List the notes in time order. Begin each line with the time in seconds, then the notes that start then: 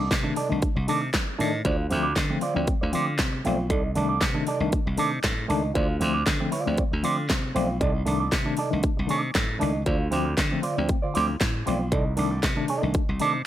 Already playing: D5
0.00 D#4 A4
0.11 C3, kick, snare, clap, closed hi-hat
0.23 D#3 A3 D4, muted clean electric guitar stroke
0.36 C3 D#4 A4 D5, open hi-hat
0.49 C2 D#3 A3 D4, muted clean electric guitar stroke
0.61 A3 D4, kick, closed hi-hat
0.75 C2 C3, muted clean electric guitar stroke
0.88 C3 D#3 A3 D4 D#4 A4 D5, open hi-hat
1.02 muted clean electric guitar stroke
1.14 kick, snare, clap, closed hi-hat
1.27 muted clean electric guitar stroke
1.38 A2 D#3 A3 D4 D#4 A4 D5, open hi-hat
1.53 muted clean electric guitar stroke
1.64 D2 D3 F4 C5 D5, kick, closed hi-hat
1.78 muted clean electric guitar stroke
1.90 D2 F3 A3 C4 F4 C5 D5, open hi-hat
2.03 A3 C4 F4 C5 D5
2.16 D3, muted clean electric guitar stroke, kick, snare, clap, closed hi-hat
2.30 F3 A3 C4, muted clean electric guitar stroke
2.41 D3 F4 C5 D5, open hi-hat
2.54 D2 F3 A3 C4 F4 D5
2.67 A3 C4, kick, closed hi-hat
2.81 D2 D3 F4 C5 D5
2.92 D3 F3 A3 C4 F4 C5 D5, open hi-hat
3.07 muted clean electric guitar stroke
3.19 C3, muted clean electric guitar stroke, kick, snare, clap, closed hi-hat
3.33 muted clean electric guitar stroke
3.45 B1 F3 A3 C4 F4 C5 D5, open hi-hat
3.58 muted clean electric guitar stroke
3.70 C2 C3 D#4 A4 D5, kick, closed hi-hat
3.84 muted clean electric guitar stroke
3.95 C2 D#3 A3 D4 D#4 A4 D5, open hi-hat
4.09 A3 D4 D#4 A4 D5
4.21 C3, kick, snare, clap, closed hi-hat
4.34 D#3 A3 D4, muted clean electric guitar stroke
4.47 C3 D#4 A4 D5, open hi-hat
4.60 C2 D#3 A3 D4, muted clean electric guitar stroke
4.72 A3 D4, kick, closed hi-hat
4.86 C2 C3, muted clean electric guitar stroke
4.97 C3 D#3 A3 D4 D#4 A4 D5, open hi-hat
5.12 muted clean electric guitar stroke
5.23 A2, kick, snare, clap, closed hi-hat
5.38 muted clean electric guitar stroke
5.48 C#2 D#3 A3 D4 D#4 A4 D5, open hi-hat
5.63 muted clean electric guitar stroke
5.74 D2 D3 F4 C5 D5, kick, closed hi-hat
5.89 muted clean electric guitar stroke
6.00 D2 F3 A3 C4 F4 C5 D5, open hi-hat
6.14 F4 C5 D5
6.26 D3, kick, snare, clap, closed hi-hat
6.40 F3 A3 C4, muted clean electric guitar stroke
6.52 D3 F4 C5 D5, open hi-hat
6.65 D2 F3 A3 C4 F4 C5 D5
6.77 A3 C4, kick, closed hi-hat
6.91 D2 D3, muted clean electric guitar stroke
7.03 D3 F3 A3 C4 F4 C5 D5, open hi-hat
7.18 muted clean electric guitar stroke
7.29 C3, muted clean electric guitar stroke, kick, snare, clap, closed hi-hat
7.42 muted clean electric guitar stroke
7.54 B1 F3 A3 C4 F4 C5 D5, open hi-hat
7.69 muted clean electric guitar stroke
7.80 C2 C3 D#4 A4 D5, kick, closed hi-hat
7.94 muted clean electric guitar stroke
8.05 C2 D#3 A3 D4 D#4 A4 D5, open hi-hat
8.19 A3 D4 D#4 A4 D5
8.32 C3, kick, snare, clap, closed hi-hat
8.45 D#3 A3 D4, muted clean electric guitar stroke
8.57 C3 D#4 A4 D5, open hi-hat
8.70 C2 D#3 A3 D4, muted clean electric guitar stroke
8.83 A3 D4, kick, closed hi-hat
8.96 C2 C3, muted clean electric guitar stroke
9.07 C3 D#3 A3 D4 D#4 A4 D5, open hi-hat
9.23 muted clean electric guitar stroke
9.35 A2, kick, snare, clap, closed hi-hat
9.48 muted clean electric guitar stroke
9.59 C#2 D#3 A3 D4 D#4 A4 D5, open hi-hat
9.73 muted clean electric guitar stroke
9.85 D2 D3 F4 C5 D5, kick, closed hi-hat
9.99 muted clean electric guitar stroke
10.11 D2 F3 A3 C4 F4 C5 D5, open hi-hat
10.25 A3 C4 F4 C5 D5
10.37 D3, kick, snare, clap, closed hi-hat
10.51 F3 A3 C4, muted clean electric guitar stroke
10.62 D3 F4 C5 D5, open hi-hat
10.76 D2 F3 A3 C4 F4 C5 D5
10.89 A3 C4, kick, closed hi-hat
11.02 D3 F4 C5 D5
11.14 D2 F3 A3 C4 F4 C5 D5, open hi-hat
11.28 muted clean electric guitar stroke
11.40 A2, muted clean electric guitar stroke, kick, snare, clap, closed hi-hat
11.54 muted clean electric guitar stroke
11.66 B1 F3 A3 C4 F4 C5 D5, open hi-hat
11.80 muted clean electric guitar stroke
11.92 C2 C3 D#4 A4 D5, kick, closed hi-hat
12.05 muted clean electric guitar stroke
12.16 C2 D#3 A3 D4 D#4 A4 D5, open hi-hat
12.30 A3 D4 D#4 A4 D5
12.43 C3, kick, snare, clap, closed hi-hat
12.56 D#3 A3 D4, muted clean electric guitar stroke
12.68 C3 D#4 A4 D5, open hi-hat
12.82 C2 D#3 A3 D4, muted clean electric guitar stroke
12.94 A3 D4, kick, closed hi-hat
13.09 C2 C3, muted clean electric guitar stroke
13.19 C3 D#3 A3 D4 D#4 A4 D5, open hi-hat
13.34 muted clean electric guitar stroke